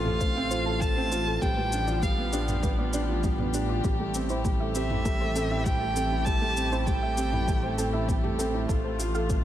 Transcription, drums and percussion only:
0.05 mid tom medium
0.21 kick loud
0.21 shaker soft
0.51 shaker medium
0.81 kick loud
0.81 shaker soft
1.12 shaker medium
1.42 kick loud
1.42 shaker soft
1.72 shaker medium
1.88 shaker soft
2.03 kick loud
2.03 shaker soft
2.33 shaker medium
2.48 mid tom medium
2.48 shaker soft
2.63 kick loud
2.63 shaker soft
2.93 shaker medium
3.23 kick loud
3.23 shaker soft
3.38 mid tom medium
3.54 shaker medium
3.84 kick loud
3.84 shaker soft
4.14 shaker medium
4.29 shaker soft
4.45 kick loud
4.45 shaker soft
4.75 shaker medium
4.90 mid tom medium
5.05 kick loud
5.05 shaker soft
5.36 shaker medium
5.66 kick loud
5.66 shaker soft
5.96 shaker medium
6.26 kick loud
6.26 shaker soft
6.57 shaker medium
6.72 shaker soft
6.87 kick loud
6.87 shaker soft
7.17 shaker medium
7.33 mid tom medium
7.48 kick loud
7.48 shaker soft
7.78 shaker medium
8.09 kick loud
8.09 shaker soft
8.24 mid tom medium
8.39 shaker medium
8.69 kick loud
8.69 shaker soft
9.00 shaker medium
9.15 shaker soft
9.30 kick loud
9.30 shaker soft

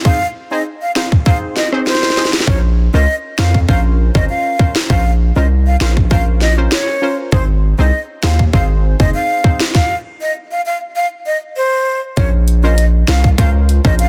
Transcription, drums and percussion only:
0.05 kick loud
0.96 snare loud
1.12 kick medium
1.26 kick medium
1.56 snare medium
1.73 cross-stick medium
1.87 snare medium
1.95 snare medium
2.03 snare medium
2.10 snare medium
2.17 snare medium
2.25 snare medium
2.33 snare loud
2.40 snare medium
2.47 kick loud
3.39 snare loud
3.54 kick medium
3.69 kick medium
4.15 kick medium
4.59 kick medium
4.76 snare loud
4.90 kick loud
5.81 snare loud
5.97 kick medium
6.11 kick medium
6.41 snare medium
6.72 snare loud
7.32 kick loud
8.23 snare loud
8.39 kick medium
8.53 kick medium
9.00 kick medium
9.44 kick medium
9.60 snare loud
9.75 kick loud
9.75 snare medium
12.17 kick loud
12.17 closed hi-hat medium
12.48 closed hi-hat soft
12.78 closed hi-hat medium
13.08 snare loud
13.08 closed hi-hat medium
13.24 kick medium
13.38 kick loud
13.38 closed hi-hat medium
13.69 closed hi-hat medium
13.85 kick medium
13.99 closed hi-hat medium

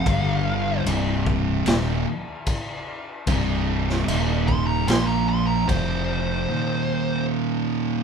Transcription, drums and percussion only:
0.06 kick loud
0.06 crash medium
0.86 crash medium
1.26 kick medium
1.66 snare loud
1.66 crash medium
2.46 kick medium
2.46 crash medium
3.27 kick loud
3.27 crash medium
3.89 snare soft
4.08 crash medium
4.48 kick medium
4.88 snare loud
4.88 crash medium
5.69 kick medium
5.69 crash medium

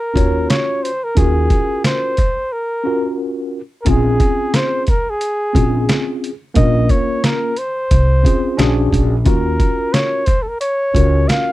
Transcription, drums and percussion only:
0.16 kick medium
0.16 closed hi-hat medium
0.50 snare loud
0.50 closed hi-hat medium
0.85 closed hi-hat medium
1.17 kick loud
1.17 closed hi-hat medium
1.50 kick medium
1.50 closed hi-hat medium
1.84 snare loud
1.84 closed hi-hat medium
2.17 kick medium
2.17 closed hi-hat medium
3.86 kick loud
3.86 closed hi-hat medium
4.20 kick medium
4.20 closed hi-hat medium
4.54 snare loud
4.54 closed hi-hat medium
4.87 kick medium
4.87 closed hi-hat medium
5.21 closed hi-hat medium
5.55 kick medium
5.55 closed hi-hat medium
5.89 snare loud
5.89 closed hi-hat medium
6.24 closed hi-hat medium
6.55 kick loud
6.55 closed hi-hat medium
6.89 kick medium
6.89 closed hi-hat medium
7.24 snare loud
7.24 closed hi-hat medium
7.57 closed hi-hat medium
7.91 kick medium
7.91 closed hi-hat medium
8.25 kick medium
8.25 closed hi-hat medium
8.59 snare loud
8.59 closed hi-hat medium
8.93 kick medium
8.93 closed hi-hat medium
9.26 kick loud
9.26 closed hi-hat medium
9.60 kick medium
9.60 closed hi-hat medium
9.94 snare loud
9.94 closed hi-hat medium
10.26 kick medium
10.26 closed hi-hat medium
10.61 closed hi-hat medium
10.95 kick medium
10.95 closed hi-hat medium
11.29 snare loud
11.29 closed hi-hat medium

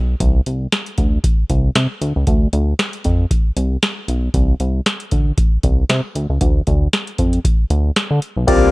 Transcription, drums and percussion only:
0.20 kick loud
0.20 closed hi-hat medium
0.46 closed hi-hat medium
0.72 snare loud
0.72 closed hi-hat medium
0.86 closed hi-hat soft
0.98 kick medium
0.98 closed hi-hat medium
1.24 kick loud
1.24 closed hi-hat loud
1.50 kick medium
1.50 closed hi-hat medium
1.75 snare loud
1.75 closed hi-hat medium
2.02 closed hi-hat medium
2.27 kick loud
2.27 closed hi-hat medium
2.53 closed hi-hat medium
2.79 snare loud
2.79 closed hi-hat medium
2.93 closed hi-hat medium
3.04 kick medium
3.04 closed hi-hat medium
3.31 kick loud
3.31 closed hi-hat loud
3.57 closed hi-hat medium
3.83 snare loud
3.83 closed hi-hat medium
4.08 closed hi-hat medium
4.34 kick loud
4.34 closed hi-hat medium
4.60 closed hi-hat medium
4.86 snare loud
4.86 closed hi-hat medium
5.00 closed hi-hat medium
5.11 kick medium
5.11 closed hi-hat medium
5.38 kick loud
5.38 closed hi-hat loud
5.63 kick medium
5.63 closed hi-hat medium
5.89 snare loud
5.89 closed hi-hat medium
6.15 closed hi-hat medium
6.41 kick loud
6.41 closed hi-hat medium
6.67 kick medium
6.67 closed hi-hat medium
6.93 snare medium
6.93 closed hi-hat medium
7.07 closed hi-hat medium
7.18 kick medium
7.18 closed hi-hat medium
7.33 closed hi-hat medium
7.45 kick loud
7.45 closed hi-hat loud
7.70 closed hi-hat medium
7.96 snare loud
7.96 closed hi-hat medium
8.22 closed hi-hat medium
8.48 kick loud
8.48 closed hi-hat loud
8.48 crash loud

